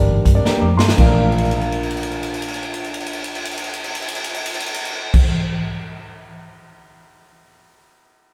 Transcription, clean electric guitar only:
0.46 0.64 A#3 medium
0.46 0.64 D4 medium
0.46 0.65 G4 medium
0.79 0.88 A#3 medium
0.79 0.88 D4 medium
0.79 0.88 G4 medium
0.98 5.21 D4 medium
0.98 5.22 F4 medium
1.03 5.23 A#4 medium

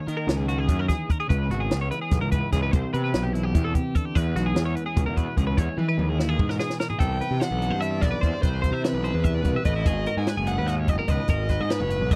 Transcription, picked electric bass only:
0.08 0.27 D#3 medium
0.27 0.66 C#2 medium
0.69 0.88 F#2 medium
1.30 1.49 C#2 loud
1.50 1.69 G#1 medium
1.71 1.90 C#2 medium
2.11 2.21 B1 medium
2.22 2.41 C#2 medium
2.53 2.71 C#2 medium
2.73 2.82 C2 medium
2.94 3.12 C3 medium
3.14 3.52 B1 medium
3.55 3.73 E2 medium
4.16 4.35 E2 loud
4.36 4.55 B1 medium
4.55 4.74 E2 medium
4.97 5.06 C#2 medium
5.07 5.26 E2 medium
5.37 5.56 C#2 medium
5.58 5.67 E2 medium
5.78 5.97 E3 medium
5.98 6.37 D#2 medium
6.39 6.58 G#2 medium
7.01 7.20 C2 medium
7.31 7.40 C3 medium
7.51 7.70 B1 medium
7.71 8.00 G2 medium
8.02 8.12 B1 medium
8.23 8.32 E2 medium
8.43 8.71 C2 medium
8.72 8.92 C3 medium
8.93 9.13 B1 medium
9.14 9.45 E2 medium
9.45 9.55 C2 medium
9.65 9.85 A1 medium
9.86 10.06 G#1 medium
10.17 10.27 G#2 medium
10.37 10.57 F#1 medium
10.58 10.87 D#2 medium
10.88 10.98 F#1 medium
11.09 11.18 C#2 medium
11.29 11.58 G#1 medium
11.60 11.80 G#2 medium
11.80 12.00 F#1 medium
12.01 12.16 B1 medium

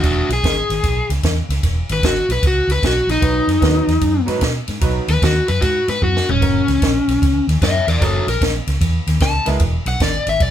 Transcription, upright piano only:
3.21 3.45 F#3 medium
3.21 3.45 B3 medium
3.21 3.45 D#4 medium
3.21 3.46 F#4 medium
3.21 3.46 B4 medium
3.61 3.85 F#3 medium
3.61 3.85 B3 medium
3.61 3.85 D#4 medium
3.61 3.86 F#4 medium
3.61 3.86 B4 medium
4.26 4.39 F#3 medium
4.26 4.40 B3 medium
4.26 4.40 D#4 medium
4.26 4.40 F#4 medium
4.26 4.40 B4 medium
4.81 5.05 F#3 medium
4.81 5.05 B3 medium
4.81 5.05 D#4 medium
4.81 5.05 F#4 medium
4.81 5.06 B4 medium
6.41 6.65 F#3 medium
6.41 6.65 A#3 medium
6.41 6.65 C#4 medium
6.41 6.65 F#4 medium
6.41 6.66 A#4 medium
8.00 8.24 F#3 medium
8.00 8.24 A#3 medium
8.00 8.24 C#4 medium
8.00 8.24 F#4 medium
8.00 8.25 A#4 medium
9.45 9.58 G#3 medium
9.45 9.58 B3 medium
9.45 9.59 E4 medium
9.45 9.59 G#4 medium
9.45 9.59 A#4 medium

